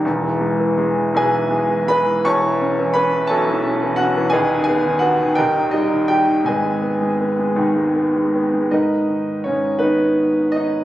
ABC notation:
X:1
M:6/8
L:1/16
Q:3/8=55
K:G#m
V:1 name="Grand piano"
z6 [GBg]4 [Bb]2 | [c=ac']4 [Bb]2 [=Aca]4 [Ff]2 | [GBdg]2 [Gg]2 [Ff]2 [=GAd=g]2 [Dd]2 [Gg]2 | [GBdg]8- [GBdg]2 z2 |
[DABd]4 [Cc]2 [B,DB]4 [Dd]2 |]
V:2 name="Grand piano" clef=bass
[E,,,E,,] E, G, E, G, E, [B,,,B,,] E, G, E, G, E, | [E,,,E,,] E, C E, C E, [B,,,B,,] E, C E, C E, | [D,,,D,,] D, B, D, B, D, [D,,,D,,] D, =G, D, G, D, | [G,,,G,,] G, B, G, B, G, [D,,D,] G, B, G, B, G, |
G,,2 D,2 G,,2 D,6 |]